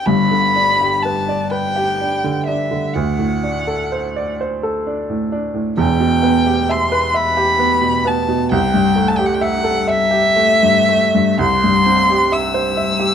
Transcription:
0.06 2.90 G1 medium
0.06 2.91 G2 medium
0.06 1.04 B5 loud
0.31 0.70 D3 soft
0.56 0.94 D4 soft
0.81 1.18 G4 soft
1.03 1.42 B4 soft
1.03 1.52 A5 medium
1.29 1.66 D5 medium
1.51 1.89 B4 medium
1.51 2.46 G5 medium
1.76 2.14 G4 medium
2.01 2.38 D4 soft
2.24 2.62 D3 soft
2.47 2.85 D4 medium
2.47 2.95 E5 medium
2.71 2.94 D3 soft
2.94 5.75 D2 medium
2.94 4.39 F#5 medium
3.19 3.57 A2 medium
3.43 3.81 D4 medium
3.67 4.06 A4 soft
3.92 4.30 C5 medium
4.16 4.54 D5 medium
4.41 4.78 C5 medium
4.63 5.00 A4 medium
4.87 5.23 D4 medium
5.10 5.46 A2 soft
5.32 5.69 D4 medium
5.54 5.78 A2 soft
5.77 8.48 E1 medium
5.77 8.48 E2 medium
5.77 6.73 G5 medium
6.00 6.38 B2 medium
6.23 6.60 B3 medium
6.46 6.84 G4 soft
6.69 7.06 E5 medium
6.69 7.17 C6 medium
6.92 7.28 B4 medium
7.14 7.51 E5 medium
7.14 8.09 B5 loud
7.37 7.74 G4 medium
7.59 7.96 B3 medium
7.81 8.19 B2 soft
8.05 8.43 B3 medium
8.05 8.51 A5 medium
8.28 8.52 B2 soft
8.51 11.36 C2 medium
8.51 9.10 G5 loud
8.74 9.10 G2 medium
8.96 9.32 A3 medium
9.08 9.18 A5 medium
9.16 9.55 G4 medium
9.16 9.27 G5 medium
9.26 9.36 F#5 medium
9.34 9.43 G5 medium
9.41 9.78 E5 medium
9.41 9.90 F#5 loud
9.64 10.02 A4 medium
9.88 10.27 E5 medium
9.88 11.40 E5 loud
10.11 10.52 G4 medium
10.36 10.78 A3 medium
10.63 11.05 G2 soft
10.89 11.30 A3 medium
11.15 11.40 G2 medium
11.39 13.14 C2 medium
11.39 12.34 C6 loud
11.64 12.01 G2 medium
11.86 12.23 C4 medium
12.10 12.46 G4 medium
12.32 12.68 E5 medium
12.32 13.14 E6 loud
12.54 12.91 C5 medium
12.77 13.14 E5 medium
13.00 13.14 G4 medium

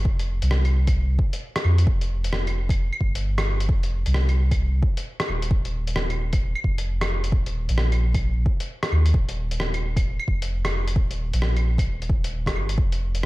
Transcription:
0.05 0.40 F1 loud
0.05 kick loud
0.19 closed hi-hat soft
0.42 1.18 C2 medium
0.42 closed hi-hat medium
0.51 cross-stick loud
0.65 closed hi-hat soft
0.65 claves soft
0.87 kick loud
0.87 closed hi-hat medium
0.87 claves soft
1.19 kick loud
1.33 closed hi-hat medium
1.56 cross-stick loud
1.56 closed hi-hat soft
1.64 1.86 F2 medium
1.64 claves soft
1.78 closed hi-hat medium
1.87 2.90 F1 medium
1.87 kick loud
2.01 closed hi-hat soft
2.24 closed hi-hat medium
2.33 cross-stick loud
2.47 closed hi-hat soft
2.47 claves soft
2.69 kick loud
2.69 closed hi-hat medium
2.69 claves soft
2.93 claves medium
3.01 3.68 G1 medium
3.01 kick medium
3.15 closed hi-hat medium
3.38 cross-stick loud
3.38 closed hi-hat soft
3.38 claves medium
3.60 closed hi-hat medium
3.69 4.04 F1 loud
3.69 kick loud
3.83 closed hi-hat soft
4.06 4.82 C2 medium
4.06 closed hi-hat soft
4.14 cross-stick loud
4.29 closed hi-hat soft
4.29 claves soft
4.51 kick loud
4.51 closed hi-hat soft
4.51 claves soft
4.83 kick loud
4.97 closed hi-hat soft
5.20 cross-stick loud
5.20 closed hi-hat soft
5.28 5.50 D#1 loud
5.28 claves soft
5.42 closed hi-hat medium
5.51 6.54 D#1 loud
5.51 kick loud
5.65 closed hi-hat soft
5.87 closed hi-hat soft
5.96 cross-stick loud
6.10 closed hi-hat soft
6.10 claves soft
6.33 kick loud
6.33 closed hi-hat soft
6.33 claves soft
6.55 claves medium
6.64 7.31 F1 loud
6.64 kick medium
6.78 closed hi-hat soft
7.01 cross-stick loud
7.01 closed hi-hat soft
7.01 claves medium
7.24 closed hi-hat medium
7.32 7.68 D#1 loud
7.32 kick loud
7.46 closed hi-hat soft
7.69 8.45 A#1 medium
7.69 closed hi-hat soft
7.78 cross-stick loud
7.92 closed hi-hat soft
7.92 claves soft
8.14 kick loud
8.14 closed hi-hat soft
8.14 claves soft
8.46 kick medium
8.60 closed hi-hat soft
8.83 cross-stick medium
8.83 closed hi-hat soft
8.92 9.13 D#2 medium
8.92 claves soft
9.06 closed hi-hat medium
9.14 10.18 D#1 loud
9.14 kick loud
9.29 closed hi-hat soft
9.51 closed hi-hat medium
9.60 cross-stick loud
9.74 closed hi-hat soft
9.74 claves soft
9.96 kick loud
9.96 closed hi-hat soft
9.96 claves soft
10.19 claves medium
10.28 10.95 F1 loud
10.28 kick medium
10.42 closed hi-hat medium
10.65 cross-stick loud
10.65 closed hi-hat soft
10.65 claves medium
10.88 closed hi-hat medium
10.96 11.31 D#1 loud
10.96 kick loud
11.11 closed hi-hat soft
11.33 11.89 A#1 medium
11.33 closed hi-hat medium
11.42 cross-stick loud
11.56 closed hi-hat soft
11.56 claves soft
11.78 kick loud
11.78 closed hi-hat medium
11.78 claves soft
11.87 12.57 D#1 loud
12.02 closed hi-hat soft
12.10 kick medium
12.24 closed hi-hat medium
12.46 kick medium
12.46 cross-stick loud
12.46 closed hi-hat soft
12.55 12.77 G1 medium
12.55 claves soft
12.69 closed hi-hat medium
12.78 13.26 F1 loud
12.78 kick loud
12.92 closed hi-hat soft
13.15 closed hi-hat medium

